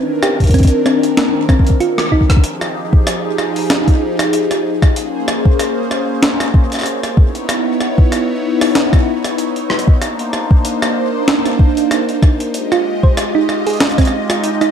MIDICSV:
0, 0, Header, 1, 5, 480
1, 0, Start_track
1, 0, Key_signature, -4, "minor"
1, 0, Tempo, 631579
1, 1851, Time_signature, 4, 2, 24, 8
1, 11180, End_track
2, 0, Start_track
2, 0, Title_t, "Synth texture"
2, 0, Program_c, 0, 99
2, 9532, Note_on_c, 0, 63, 88
2, 9532, Note_on_c, 0, 75, 88
2, 11180, Note_off_c, 0, 63, 0
2, 11180, Note_off_c, 0, 75, 0
2, 11180, End_track
3, 0, Start_track
3, 0, Title_t, "Analog synth pad"
3, 0, Program_c, 1, 89
3, 0, Note_on_c, 1, 51, 83
3, 0, Note_on_c, 1, 60, 74
3, 0, Note_on_c, 1, 62, 78
3, 0, Note_on_c, 1, 70, 94
3, 1832, Note_off_c, 1, 51, 0
3, 1832, Note_off_c, 1, 60, 0
3, 1832, Note_off_c, 1, 62, 0
3, 1832, Note_off_c, 1, 70, 0
3, 1852, Note_on_c, 1, 53, 83
3, 1852, Note_on_c, 1, 63, 75
3, 1852, Note_on_c, 1, 67, 76
3, 1852, Note_on_c, 1, 68, 93
3, 3752, Note_off_c, 1, 63, 0
3, 3752, Note_off_c, 1, 67, 0
3, 3752, Note_off_c, 1, 68, 0
3, 3753, Note_off_c, 1, 53, 0
3, 3771, Note_on_c, 1, 58, 85
3, 3771, Note_on_c, 1, 61, 80
3, 3771, Note_on_c, 1, 72, 94
3, 3772, Note_on_c, 1, 68, 77
3, 5434, Note_off_c, 1, 61, 0
3, 5435, Note_off_c, 1, 58, 0
3, 5435, Note_off_c, 1, 68, 0
3, 5435, Note_off_c, 1, 72, 0
3, 5451, Note_on_c, 1, 59, 84
3, 5451, Note_on_c, 1, 63, 77
3, 5451, Note_on_c, 1, 64, 80
3, 5451, Note_on_c, 1, 73, 93
3, 7590, Note_off_c, 1, 59, 0
3, 7590, Note_off_c, 1, 64, 0
3, 7590, Note_off_c, 1, 73, 0
3, 7611, Note_on_c, 1, 58, 83
3, 7611, Note_on_c, 1, 62, 80
3, 7611, Note_on_c, 1, 72, 95
3, 9501, Note_off_c, 1, 63, 0
3, 9512, Note_off_c, 1, 58, 0
3, 9512, Note_off_c, 1, 62, 0
3, 9512, Note_off_c, 1, 72, 0
3, 9532, Note_on_c, 1, 56, 84
3, 9532, Note_on_c, 1, 65, 77
3, 9532, Note_on_c, 1, 67, 78
3, 9533, Note_on_c, 1, 75, 93
3, 11180, Note_off_c, 1, 56, 0
3, 11180, Note_off_c, 1, 65, 0
3, 11180, Note_off_c, 1, 67, 0
3, 11180, Note_off_c, 1, 75, 0
3, 11180, End_track
4, 0, Start_track
4, 0, Title_t, "Synth arpeggio sound"
4, 0, Program_c, 2, 84
4, 171, Note_on_c, 2, 67, 79
4, 245, Note_off_c, 2, 67, 0
4, 411, Note_on_c, 2, 60, 97
4, 485, Note_off_c, 2, 60, 0
4, 651, Note_on_c, 2, 60, 101
4, 725, Note_off_c, 2, 60, 0
4, 891, Note_on_c, 2, 58, 82
4, 965, Note_off_c, 2, 58, 0
4, 1132, Note_on_c, 2, 60, 101
4, 1242, Note_off_c, 2, 60, 0
4, 1371, Note_on_c, 2, 65, 98
4, 1482, Note_off_c, 2, 65, 0
4, 1612, Note_on_c, 2, 63, 99
4, 1685, Note_off_c, 2, 63, 0
4, 9666, Note_on_c, 2, 65, 101
4, 9724, Note_off_c, 2, 65, 0
4, 9905, Note_on_c, 2, 72, 75
4, 9940, Note_off_c, 2, 72, 0
4, 10145, Note_on_c, 2, 63, 103
4, 10204, Note_off_c, 2, 63, 0
4, 10386, Note_on_c, 2, 68, 76
4, 10444, Note_off_c, 2, 68, 0
4, 10625, Note_on_c, 2, 60, 103
4, 10684, Note_off_c, 2, 60, 0
4, 10865, Note_on_c, 2, 65, 78
4, 10924, Note_off_c, 2, 65, 0
4, 11105, Note_on_c, 2, 63, 102
4, 11164, Note_off_c, 2, 63, 0
4, 11180, End_track
5, 0, Start_track
5, 0, Title_t, "Drums"
5, 171, Note_on_c, 9, 37, 81
5, 247, Note_off_c, 9, 37, 0
5, 305, Note_on_c, 9, 36, 45
5, 306, Note_on_c, 9, 42, 29
5, 331, Note_off_c, 9, 36, 0
5, 331, Note_on_c, 9, 36, 53
5, 332, Note_off_c, 9, 42, 0
5, 332, Note_on_c, 9, 42, 35
5, 359, Note_off_c, 9, 42, 0
5, 359, Note_on_c, 9, 42, 37
5, 376, Note_off_c, 9, 36, 0
5, 376, Note_on_c, 9, 36, 65
5, 385, Note_off_c, 9, 42, 0
5, 385, Note_on_c, 9, 42, 41
5, 411, Note_off_c, 9, 36, 0
5, 411, Note_off_c, 9, 42, 0
5, 411, Note_on_c, 9, 36, 70
5, 411, Note_on_c, 9, 42, 54
5, 445, Note_off_c, 9, 42, 0
5, 445, Note_on_c, 9, 42, 53
5, 456, Note_off_c, 9, 36, 0
5, 456, Note_on_c, 9, 36, 80
5, 479, Note_off_c, 9, 42, 0
5, 479, Note_on_c, 9, 42, 56
5, 491, Note_off_c, 9, 36, 0
5, 491, Note_on_c, 9, 36, 88
5, 512, Note_off_c, 9, 42, 0
5, 512, Note_on_c, 9, 42, 60
5, 567, Note_off_c, 9, 36, 0
5, 588, Note_off_c, 9, 42, 0
5, 652, Note_on_c, 9, 37, 57
5, 728, Note_off_c, 9, 37, 0
5, 786, Note_on_c, 9, 42, 68
5, 862, Note_off_c, 9, 42, 0
5, 892, Note_on_c, 9, 38, 117
5, 892, Note_on_c, 9, 42, 55
5, 968, Note_off_c, 9, 38, 0
5, 968, Note_off_c, 9, 42, 0
5, 1131, Note_on_c, 9, 36, 107
5, 1132, Note_on_c, 9, 37, 55
5, 1207, Note_off_c, 9, 36, 0
5, 1208, Note_off_c, 9, 37, 0
5, 1211, Note_on_c, 9, 36, 87
5, 1266, Note_on_c, 9, 42, 67
5, 1287, Note_off_c, 9, 36, 0
5, 1291, Note_on_c, 9, 36, 71
5, 1342, Note_off_c, 9, 42, 0
5, 1367, Note_off_c, 9, 36, 0
5, 1371, Note_on_c, 9, 42, 52
5, 1447, Note_off_c, 9, 42, 0
5, 1506, Note_on_c, 9, 37, 82
5, 1582, Note_off_c, 9, 37, 0
5, 1611, Note_on_c, 9, 36, 51
5, 1678, Note_off_c, 9, 36, 0
5, 1678, Note_on_c, 9, 36, 67
5, 1745, Note_off_c, 9, 36, 0
5, 1745, Note_on_c, 9, 36, 80
5, 1746, Note_on_c, 9, 37, 74
5, 1746, Note_on_c, 9, 42, 66
5, 1798, Note_off_c, 9, 36, 0
5, 1798, Note_on_c, 9, 36, 96
5, 1822, Note_off_c, 9, 37, 0
5, 1822, Note_off_c, 9, 42, 0
5, 1852, Note_on_c, 9, 42, 83
5, 1874, Note_off_c, 9, 36, 0
5, 1928, Note_off_c, 9, 42, 0
5, 1986, Note_on_c, 9, 37, 56
5, 2062, Note_off_c, 9, 37, 0
5, 2225, Note_on_c, 9, 36, 108
5, 2301, Note_off_c, 9, 36, 0
5, 2332, Note_on_c, 9, 37, 83
5, 2332, Note_on_c, 9, 42, 83
5, 2408, Note_off_c, 9, 37, 0
5, 2408, Note_off_c, 9, 42, 0
5, 2572, Note_on_c, 9, 37, 55
5, 2648, Note_off_c, 9, 37, 0
5, 2706, Note_on_c, 9, 46, 62
5, 2782, Note_off_c, 9, 46, 0
5, 2812, Note_on_c, 9, 37, 55
5, 2812, Note_on_c, 9, 38, 121
5, 2812, Note_on_c, 9, 42, 85
5, 2888, Note_off_c, 9, 37, 0
5, 2888, Note_off_c, 9, 38, 0
5, 2888, Note_off_c, 9, 42, 0
5, 2946, Note_on_c, 9, 36, 115
5, 2947, Note_on_c, 9, 42, 39
5, 3022, Note_off_c, 9, 36, 0
5, 3023, Note_off_c, 9, 42, 0
5, 3186, Note_on_c, 9, 37, 84
5, 3186, Note_on_c, 9, 42, 56
5, 3262, Note_off_c, 9, 37, 0
5, 3262, Note_off_c, 9, 42, 0
5, 3292, Note_on_c, 9, 42, 81
5, 3368, Note_off_c, 9, 42, 0
5, 3426, Note_on_c, 9, 37, 54
5, 3426, Note_on_c, 9, 42, 39
5, 3502, Note_off_c, 9, 37, 0
5, 3502, Note_off_c, 9, 42, 0
5, 3666, Note_on_c, 9, 36, 104
5, 3666, Note_on_c, 9, 37, 55
5, 3742, Note_off_c, 9, 36, 0
5, 3742, Note_off_c, 9, 37, 0
5, 3772, Note_on_c, 9, 42, 86
5, 3848, Note_off_c, 9, 42, 0
5, 4012, Note_on_c, 9, 37, 81
5, 4088, Note_off_c, 9, 37, 0
5, 4146, Note_on_c, 9, 36, 110
5, 4222, Note_off_c, 9, 36, 0
5, 4252, Note_on_c, 9, 37, 54
5, 4252, Note_on_c, 9, 42, 83
5, 4328, Note_off_c, 9, 37, 0
5, 4328, Note_off_c, 9, 42, 0
5, 4492, Note_on_c, 9, 37, 54
5, 4568, Note_off_c, 9, 37, 0
5, 4732, Note_on_c, 9, 38, 127
5, 4732, Note_on_c, 9, 42, 86
5, 4808, Note_off_c, 9, 38, 0
5, 4808, Note_off_c, 9, 42, 0
5, 4866, Note_on_c, 9, 37, 83
5, 4866, Note_on_c, 9, 42, 39
5, 4942, Note_off_c, 9, 37, 0
5, 4942, Note_off_c, 9, 42, 0
5, 4971, Note_on_c, 9, 36, 125
5, 5047, Note_off_c, 9, 36, 0
5, 5106, Note_on_c, 9, 37, 24
5, 5106, Note_on_c, 9, 42, 55
5, 5124, Note_off_c, 9, 37, 0
5, 5124, Note_on_c, 9, 37, 29
5, 5132, Note_off_c, 9, 37, 0
5, 5132, Note_on_c, 9, 37, 33
5, 5159, Note_off_c, 9, 37, 0
5, 5159, Note_on_c, 9, 37, 39
5, 5177, Note_off_c, 9, 37, 0
5, 5177, Note_on_c, 9, 37, 41
5, 5182, Note_off_c, 9, 42, 0
5, 5194, Note_off_c, 9, 37, 0
5, 5194, Note_on_c, 9, 37, 46
5, 5211, Note_on_c, 9, 42, 84
5, 5270, Note_off_c, 9, 37, 0
5, 5287, Note_off_c, 9, 42, 0
5, 5346, Note_on_c, 9, 37, 52
5, 5346, Note_on_c, 9, 42, 38
5, 5422, Note_off_c, 9, 37, 0
5, 5422, Note_off_c, 9, 42, 0
5, 5451, Note_on_c, 9, 36, 125
5, 5527, Note_off_c, 9, 36, 0
5, 5586, Note_on_c, 9, 42, 55
5, 5662, Note_off_c, 9, 42, 0
5, 5691, Note_on_c, 9, 37, 78
5, 5691, Note_on_c, 9, 42, 80
5, 5767, Note_off_c, 9, 37, 0
5, 5767, Note_off_c, 9, 42, 0
5, 5932, Note_on_c, 9, 37, 53
5, 6008, Note_off_c, 9, 37, 0
5, 6066, Note_on_c, 9, 36, 113
5, 6142, Note_off_c, 9, 36, 0
5, 6172, Note_on_c, 9, 37, 53
5, 6172, Note_on_c, 9, 42, 83
5, 6248, Note_off_c, 9, 37, 0
5, 6248, Note_off_c, 9, 42, 0
5, 6546, Note_on_c, 9, 37, 82
5, 6546, Note_on_c, 9, 46, 61
5, 6622, Note_off_c, 9, 37, 0
5, 6622, Note_off_c, 9, 46, 0
5, 6652, Note_on_c, 9, 38, 126
5, 6652, Note_on_c, 9, 42, 83
5, 6728, Note_off_c, 9, 38, 0
5, 6728, Note_off_c, 9, 42, 0
5, 6786, Note_on_c, 9, 36, 124
5, 6786, Note_on_c, 9, 37, 52
5, 6862, Note_off_c, 9, 36, 0
5, 6862, Note_off_c, 9, 37, 0
5, 7026, Note_on_c, 9, 37, 53
5, 7026, Note_on_c, 9, 42, 55
5, 7102, Note_off_c, 9, 37, 0
5, 7102, Note_off_c, 9, 42, 0
5, 7132, Note_on_c, 9, 42, 83
5, 7208, Note_off_c, 9, 42, 0
5, 7266, Note_on_c, 9, 42, 37
5, 7342, Note_off_c, 9, 42, 0
5, 7372, Note_on_c, 9, 37, 75
5, 7439, Note_on_c, 9, 42, 53
5, 7448, Note_off_c, 9, 37, 0
5, 7505, Note_on_c, 9, 36, 113
5, 7515, Note_off_c, 9, 42, 0
5, 7581, Note_off_c, 9, 36, 0
5, 7612, Note_on_c, 9, 37, 52
5, 7612, Note_on_c, 9, 42, 80
5, 7688, Note_off_c, 9, 37, 0
5, 7688, Note_off_c, 9, 42, 0
5, 7746, Note_on_c, 9, 42, 38
5, 7822, Note_off_c, 9, 42, 0
5, 7852, Note_on_c, 9, 37, 51
5, 7928, Note_off_c, 9, 37, 0
5, 7985, Note_on_c, 9, 36, 112
5, 8061, Note_off_c, 9, 36, 0
5, 8092, Note_on_c, 9, 42, 81
5, 8168, Note_off_c, 9, 42, 0
5, 8226, Note_on_c, 9, 37, 76
5, 8302, Note_off_c, 9, 37, 0
5, 8571, Note_on_c, 9, 38, 125
5, 8647, Note_off_c, 9, 38, 0
5, 8706, Note_on_c, 9, 37, 51
5, 8706, Note_on_c, 9, 42, 38
5, 8782, Note_off_c, 9, 37, 0
5, 8782, Note_off_c, 9, 42, 0
5, 8811, Note_on_c, 9, 36, 127
5, 8887, Note_off_c, 9, 36, 0
5, 8946, Note_on_c, 9, 42, 53
5, 9022, Note_off_c, 9, 42, 0
5, 9052, Note_on_c, 9, 37, 75
5, 9052, Note_on_c, 9, 42, 78
5, 9128, Note_off_c, 9, 37, 0
5, 9128, Note_off_c, 9, 42, 0
5, 9186, Note_on_c, 9, 42, 36
5, 9262, Note_off_c, 9, 42, 0
5, 9291, Note_on_c, 9, 36, 127
5, 9292, Note_on_c, 9, 37, 51
5, 9367, Note_off_c, 9, 36, 0
5, 9368, Note_off_c, 9, 37, 0
5, 9426, Note_on_c, 9, 42, 53
5, 9502, Note_off_c, 9, 42, 0
5, 9531, Note_on_c, 9, 42, 74
5, 9607, Note_off_c, 9, 42, 0
5, 9666, Note_on_c, 9, 37, 52
5, 9742, Note_off_c, 9, 37, 0
5, 9905, Note_on_c, 9, 36, 108
5, 9981, Note_off_c, 9, 36, 0
5, 10011, Note_on_c, 9, 37, 80
5, 10011, Note_on_c, 9, 42, 80
5, 10087, Note_off_c, 9, 37, 0
5, 10087, Note_off_c, 9, 42, 0
5, 10252, Note_on_c, 9, 37, 51
5, 10328, Note_off_c, 9, 37, 0
5, 10386, Note_on_c, 9, 46, 60
5, 10412, Note_off_c, 9, 46, 0
5, 10412, Note_on_c, 9, 46, 49
5, 10439, Note_off_c, 9, 46, 0
5, 10439, Note_on_c, 9, 46, 41
5, 10465, Note_off_c, 9, 46, 0
5, 10465, Note_on_c, 9, 46, 33
5, 10491, Note_off_c, 9, 46, 0
5, 10491, Note_on_c, 9, 37, 24
5, 10491, Note_on_c, 9, 38, 122
5, 10491, Note_on_c, 9, 42, 35
5, 10491, Note_on_c, 9, 46, 27
5, 10525, Note_off_c, 9, 46, 0
5, 10525, Note_on_c, 9, 46, 22
5, 10536, Note_off_c, 9, 37, 0
5, 10536, Note_on_c, 9, 37, 27
5, 10558, Note_off_c, 9, 42, 0
5, 10558, Note_off_c, 9, 46, 0
5, 10558, Note_on_c, 9, 42, 45
5, 10558, Note_on_c, 9, 46, 19
5, 10567, Note_off_c, 9, 38, 0
5, 10571, Note_off_c, 9, 37, 0
5, 10571, Note_on_c, 9, 37, 33
5, 10592, Note_off_c, 9, 46, 0
5, 10592, Note_on_c, 9, 46, 15
5, 10625, Note_on_c, 9, 36, 117
5, 10626, Note_off_c, 9, 37, 0
5, 10626, Note_off_c, 9, 42, 0
5, 10626, Note_on_c, 9, 37, 37
5, 10626, Note_on_c, 9, 42, 54
5, 10652, Note_off_c, 9, 37, 0
5, 10652, Note_on_c, 9, 37, 40
5, 10668, Note_off_c, 9, 46, 0
5, 10678, Note_off_c, 9, 42, 0
5, 10678, Note_on_c, 9, 42, 64
5, 10696, Note_off_c, 9, 37, 0
5, 10696, Note_on_c, 9, 37, 46
5, 10701, Note_off_c, 9, 36, 0
5, 10754, Note_off_c, 9, 42, 0
5, 10772, Note_off_c, 9, 37, 0
5, 10866, Note_on_c, 9, 37, 79
5, 10866, Note_on_c, 9, 42, 51
5, 10942, Note_off_c, 9, 37, 0
5, 10942, Note_off_c, 9, 42, 0
5, 10971, Note_on_c, 9, 42, 77
5, 11047, Note_off_c, 9, 42, 0
5, 11106, Note_on_c, 9, 37, 51
5, 11106, Note_on_c, 9, 42, 35
5, 11180, Note_off_c, 9, 37, 0
5, 11180, Note_off_c, 9, 42, 0
5, 11180, End_track
0, 0, End_of_file